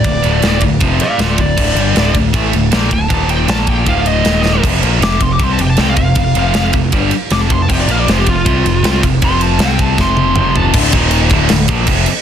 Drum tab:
CC |--------|x-------|--------|x-------|
RD |xxxxxxxx|-xxxxxxx|xxxxxxx-|-xxxxxxx|
SD |--o---o-|--o---o-|--o---oo|--o---o-|
T1 |--------|--------|--------|--------|
T2 |--------|--------|--------|--------|
FT |--------|--------|--------|--------|
BD |o--oo--o|o--oo--o|o--oo---|o--oo--o|

CC |--------|x-------|--------|xxxxxxxx|
RD |xxxxxxxx|-xxxxxxx|xxxx----|--------|
SD |--o---o-|--o---o-|--o-o---|----o---|
T1 |--------|--------|-----o--|--------|
T2 |--------|--------|------o-|--------|
FT |--------|--------|-------o|--------|
BD |o--oo--o|o--oo--o|o--oo---|oo-o-oo-|